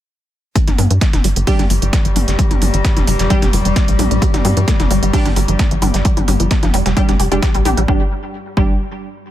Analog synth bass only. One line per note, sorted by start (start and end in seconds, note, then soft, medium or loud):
0.68 0.76 G1 medium
0.79 0.88 G2 loud
0.90 0.99 G2 medium
1.13 1.22 F1 medium
1.24 1.34 G1 loud
1.36 1.45 G1 medium
1.59 1.68 G1 medium
1.70 1.79 G1 loud
1.82 1.90 G1 medium
2.05 2.13 G1 medium
2.16 2.25 G1 loud
2.28 2.36 G1 medium
2.51 2.59 G1 medium
2.62 2.71 G1 loud
2.74 2.82 G1 medium
2.97 3.05 F1 medium
3.07 3.17 F1 loud
3.19 3.28 F1 medium
3.42 3.51 F1 medium
3.53 3.62 F1 loud
3.65 3.74 F1 medium
3.88 3.96 A#1 medium
3.99 4.08 A#1 loud
4.11 4.19 A#1 medium
4.34 4.42 G1 medium
4.45 4.54 G2 loud
4.57 4.65 G2 medium
4.80 4.88 F1 medium
4.91 5.00 G1 loud
5.03 5.11 G1 medium
5.25 5.34 G1 medium
5.36 5.46 G1 loud
5.48 5.57 G1 medium
5.71 5.80 G1 medium
5.82 5.91 G1 loud
5.94 6.03 G1 medium
6.17 6.25 G1 medium
6.28 6.37 G1 loud
6.40 6.48 G1 medium
6.63 6.71 F1 medium
6.74 6.83 F1 loud
6.86 6.94 F1 medium
7.09 7.17 F1 medium
7.20 7.29 F1 loud
7.32 7.40 F1 medium
7.54 7.63 A#1 medium
7.65 7.75 A#1 loud
7.77 7.86 A#1 medium
7.88 8.02 G1 loud
8.57 8.78 G1 loud